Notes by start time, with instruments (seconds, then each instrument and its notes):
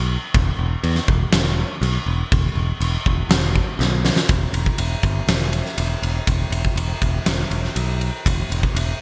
Already playing: picked electric bass B1
0.34 picked electric bass E1, kick, crash
0.59 picked electric bass E1
0.83 picked electric bass E2, crash
0.96 snare
1.08 picked electric bass E1, kick
1.32 picked electric bass E1, snare, crash
1.81 picked electric bass B1, crash
2.06 picked electric bass E1
2.32 picked electric bass E1, kick, crash
2.55 picked electric bass E1
2.80 picked electric bass E1, crash
3.06 picked electric bass E1, kick
3.29 picked electric bass E1, snare, crash
3.55 kick
3.79 picked electric bass B1, snare
4.05 snare
4.16 snare
4.29 picked electric bass E1, kick, ride
4.53 picked electric bass E1, ride
4.66 kick
4.78 picked electric bass E1, ride
5.03 picked electric bass G1, kick, ride
5.28 picked electric bass E1, snare, ride
5.53 ride
5.66 snare
5.78 picked electric bass E1, ride
6.02 picked electric bass E1, ride
6.27 picked electric bass E1, kick, ride
6.51 picked electric bass E1, ride
6.65 kick
6.76 picked electric bass E1, ride
7.02 picked electric bass E1, kick, ride
7.26 picked electric bass E1, snare, ride
7.51 picked electric bass E1, ride
7.64 snare
7.76 picked electric bass B1, ride
8.01 ride
8.26 picked electric bass E1, kick, ride
8.50 picked electric bass E1, ride
8.63 kick
8.75 picked electric bass E1, ride